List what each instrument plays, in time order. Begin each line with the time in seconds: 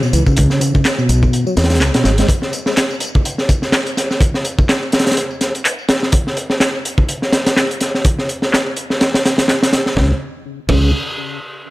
0.03 tonewheel organ B2, tambourine
0.13 fingered electric bass C#2, tonewheel organ E3, closed hi-hat, tambourine
0.26 tonewheel organ C#3, kick, tambourine
0.37 fingered electric bass C#2, kick, closed hi-hat, tambourine
0.50 snare, tambourine
0.61 tonewheel organ C#3, closed hi-hat, tambourine
0.74 tonewheel organ C#3, kick, tambourine
0.85 snare, clap, closed hi-hat, tambourine
0.98 tonewheel organ B2, tambourine
1.09 fingered electric bass B1, closed hi-hat, tambourine
1.23 kick, tambourine
1.33 closed hi-hat, tambourine
1.46 tonewheel organ F#3, tambourine
1.57 fingered electric bass E2, snare, closed hi-hat, tambourine
1.64 snare, closed hi-hat
1.70 snare, closed hi-hat, tambourine
1.75 snare, closed hi-hat
1.80 fingered electric bass C#2, snare, clap, closed hi-hat, tambourine
1.94 tonewheel organ B2, snare, closed hi-hat, tambourine
2.04 fingered electric bass G#1, tonewheel organ G#3, snare, closed hi-hat, tambourine
2.18 tonewheel organ G#3, snare, closed hi-hat, tambourine
2.29 kick, closed hi-hat, tambourine
2.42 snare
2.53 closed hi-hat, tambourine
2.66 snare, tambourine
2.77 snare, clap, closed hi-hat, tambourine
2.91 tambourine
3.00 closed hi-hat, tambourine
3.15 kick, tambourine
3.25 closed hi-hat, tambourine
3.38 snare, tambourine
3.49 kick, closed hi-hat, tambourine
3.62 snare, tambourine
3.72 snare, clap, closed hi-hat, tambourine
3.86 closed hi-hat, tambourine
3.97 snare, closed hi-hat, tambourine
4.11 snare, tambourine
4.21 kick, closed hi-hat, tambourine
4.34 snare
4.45 closed hi-hat, tambourine
4.59 kick, tambourine
4.69 snare, clap, closed hi-hat, tambourine
4.83 tambourine
4.92 snare, closed hi-hat, tambourine
4.99 snare, closed hi-hat
5.07 snare, closed hi-hat, tambourine
5.11 snare, closed hi-hat
5.17 closed hi-hat, tambourine
5.31 tambourine
5.41 snare, closed hi-hat, tambourine
5.55 closed hi-hat, tambourine
5.65 clap, closed hi-hat, tambourine
5.79 tambourine
5.89 snare, closed hi-hat, tambourine
6.03 snare, tambourine
6.12 kick, closed hi-hat, tambourine
6.27 snare
6.37 closed hi-hat, tambourine
6.50 snare, tambourine
6.60 snare, clap, closed hi-hat, tambourine
6.75 tambourine
6.85 closed hi-hat, tambourine
6.98 kick, tambourine
7.09 closed hi-hat, tambourine
7.22 snare, tambourine
7.33 snare, closed hi-hat, tambourine
7.46 snare, closed hi-hat
7.57 snare, clap, closed hi-hat, tambourine
7.71 closed hi-hat, tambourine
7.81 snare, closed hi-hat, tambourine
7.95 snare, tambourine
8.05 kick, closed hi-hat, tambourine
8.19 snare, tambourine
8.29 closed hi-hat, tambourine
8.42 snare, tambourine
8.53 snare, clap, closed hi-hat, tambourine
8.67 tambourine
8.76 closed hi-hat, tambourine
8.90 snare, tambourine
9.01 snare, closed hi-hat, tambourine
9.14 snare, closed hi-hat
9.25 snare, closed hi-hat, tambourine
9.38 snare, closed hi-hat
9.48 snare, clap, closed hi-hat
9.63 snare, closed hi-hat
9.73 snare, closed hi-hat
9.86 snare
9.97 fingered electric bass C#2, tonewheel organ C#3, kick, snare
10.69 fingered electric bass C#2, tonewheel organ C#3, kick, crash